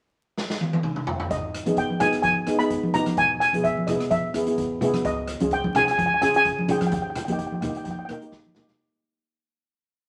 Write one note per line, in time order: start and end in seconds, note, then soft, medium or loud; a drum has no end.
0.38 snare medium
0.50 snare medium
0.61 high tom medium
0.73 high tom medium
0.83 mid tom medium
0.96 mid tom medium
1.07 floor tom medium
1.20 floor tom medium
1.31 1.59 G#1 medium
1.31 1.74 D#5 medium
1.31 kick medium
1.31 closed hi-hat medium
1.55 cross-stick medium
1.55 closed hi-hat medium
1.66 1.94 G#1 medium
1.66 1.87 B3 medium
1.66 1.88 D#4 medium
1.66 1.88 G#4 medium
1.66 closed hi-hat medium
1.66 high conga medium
1.77 2.02 G5 medium
1.77 kick medium
1.77 closed hi-hat soft
1.90 high conga medium
2.00 2.11 G#1 medium
2.00 2.29 B3 medium
2.00 2.29 D#4 medium
2.00 2.30 G#4 medium
2.00 2.11 G#5 medium
2.00 cross-stick medium
2.00 closed hi-hat medium
2.00 low conga medium
2.13 2.40 G#1 medium
2.13 cross-stick medium
2.13 closed hi-hat medium
2.22 2.60 G#5 medium
2.22 kick loud
2.22 closed hi-hat medium
2.22 high conga medium
2.47 3.03 G#2 medium
2.47 2.55 B3 medium
2.47 2.55 D#4 medium
2.47 2.56 G#4 medium
2.47 cross-stick medium
2.47 closed hi-hat medium
2.59 2.81 B3 medium
2.59 2.81 D#4 medium
2.59 2.82 G#4 medium
2.59 2.95 B5 medium
2.59 closed hi-hat medium
2.70 kick medium
2.70 closed hi-hat medium
2.83 high conga medium
2.94 3.18 B3 medium
2.94 3.18 D#4 medium
2.94 3.18 G4 medium
2.94 3.18 A#5 medium
2.94 closed hi-hat medium
2.94 low conga medium
3.06 cross-stick medium
3.06 closed hi-hat medium
3.06 high conga medium
3.17 3.46 E1 medium
3.17 3.39 G#5 medium
3.17 kick loud
3.17 closed hi-hat medium
3.40 3.63 G#5 medium
3.40 cross-stick medium
3.40 closed hi-hat medium
3.53 3.81 E1 medium
3.53 3.75 B3 medium
3.53 3.75 E4 medium
3.53 3.76 G#4 medium
3.53 closed hi-hat medium
3.53 high conga medium
3.64 3.86 E5 medium
3.64 kick medium
3.64 closed hi-hat soft
3.77 high conga medium
3.87 3.98 E1 medium
3.87 4.16 B3 medium
3.87 4.17 E4 medium
3.87 4.17 G#4 medium
3.87 4.12 D#5 medium
3.87 cross-stick medium
3.87 closed hi-hat medium
3.87 low conga medium
4.00 4.28 E1 medium
4.00 cross-stick medium
4.00 closed hi-hat medium
4.11 4.55 E5 medium
4.11 kick medium
4.11 closed hi-hat soft
4.11 high conga medium
4.34 4.90 E2 medium
4.34 4.42 B3 medium
4.34 4.42 E4 medium
4.34 4.43 G#4 medium
4.34 cross-stick medium
4.34 closed hi-hat medium
4.47 4.68 B3 medium
4.47 4.69 E4 medium
4.47 4.69 G#4 medium
4.47 closed hi-hat medium
4.58 kick medium
4.58 closed hi-hat medium
4.81 5.05 B3 medium
4.81 5.05 E4 medium
4.81 5.06 G#4 medium
4.81 closed hi-hat medium
4.81 low conga medium
4.94 cross-stick medium
4.94 closed hi-hat medium
4.94 high conga medium
5.05 5.34 C#2 medium
5.05 5.54 D#5 medium
5.05 kick loud
5.05 closed hi-hat medium
5.28 cross-stick medium
5.28 closed hi-hat medium
5.40 5.68 C#2 medium
5.40 5.62 C#4 medium
5.40 5.62 F4 medium
5.40 5.62 G#4 medium
5.40 closed hi-hat medium
5.40 high conga medium
5.51 5.74 G5 medium
5.51 kick medium
5.51 closed hi-hat soft
5.64 high conga medium
5.75 5.85 C#2 medium
5.75 6.04 C#4 medium
5.75 6.04 F4 medium
5.75 6.04 G#4 medium
5.75 5.84 G#5 medium
5.75 cross-stick medium
5.75 closed hi-hat medium
5.75 low conga medium
5.85 6.15 C#2 medium
5.85 5.90 G#5 medium
5.85 cross-stick medium
5.85 closed hi-hat medium
5.91 5.97 G#5 medium
5.98 6.05 G#5 medium
5.98 kick medium
5.98 closed hi-hat medium
5.98 high conga medium
6.06 6.13 G#5 medium
6.14 6.20 G#5 medium
6.21 6.78 C#3 medium
6.21 6.29 C#4 medium
6.21 6.30 F4 medium
6.21 6.30 G#4 medium
6.21 6.29 G#5 medium
6.21 cross-stick medium
6.21 closed hi-hat medium
6.34 6.55 C#4 medium
6.34 6.56 F4 medium
6.34 6.56 G#4 medium
6.34 6.71 G#5 medium
6.34 closed hi-hat medium
6.45 kick medium
6.45 closed hi-hat medium
6.59 high conga medium
6.68 6.92 C#4 medium
6.68 6.92 F4 medium
6.68 6.93 G#4 medium
6.68 6.77 G5 medium
6.68 closed hi-hat medium
6.68 low conga medium
6.78 6.85 G5 medium
6.78 cross-stick medium
6.78 closed hi-hat medium
6.78 high conga medium
6.87 6.92 G5 medium
6.92 7.21 D#2 medium
6.92 7.00 G5 medium
6.92 kick loud
6.92 closed hi-hat medium
7.02 7.08 G5 medium
7.10 7.15 G5 medium
7.16 7.23 G5 medium
7.16 cross-stick medium
7.16 closed hi-hat medium
7.16 low conga medium
7.25 7.56 D#2 medium
7.25 7.49 A#3 medium
7.25 7.49 D#4 medium
7.25 7.31 G5 soft
7.25 closed hi-hat medium
7.25 high conga medium
7.30 7.50 G4 medium
7.30 7.37 G5 medium
7.39 7.45 G5 soft
7.39 kick medium
7.39 closed hi-hat medium
7.47 7.53 G5 medium
7.52 7.60 G5 soft
7.52 high conga medium
7.61 7.73 D#2 medium
7.61 7.90 A#3 medium
7.61 7.91 D#4 medium
7.61 7.91 G4 medium
7.61 7.67 G5 medium
7.61 cross-stick medium
7.61 closed hi-hat medium
7.61 low conga medium
7.69 7.76 G5 medium
7.75 8.02 D#2 medium
7.75 7.83 G5 medium
7.75 closed hi-hat medium
7.84 7.89 G5 soft
7.84 kick medium
7.84 closed hi-hat medium
7.84 high conga medium
7.91 7.98 G5 medium
7.99 8.04 G5 medium
8.05 8.65 D#3 medium
8.05 8.16 A#3 medium
8.05 8.12 G5 medium
8.05 cross-stick medium
8.05 closed hi-hat medium
8.10 8.17 D#4 medium
8.10 8.18 A#4 medium
8.10 8.20 G5 medium
8.10 low conga medium
8.21 8.42 A#3 medium
8.21 8.43 D#4 medium
8.21 8.43 G4 medium
8.21 closed hi-hat medium
8.32 kick medium
8.32 snare medium
8.46 high conga soft
8.55 8.79 A#3 medium
8.55 8.79 D#4 medium
8.55 8.80 G4 medium
8.55 snare medium
8.55 low conga medium
8.68 snare medium
8.68 low conga medium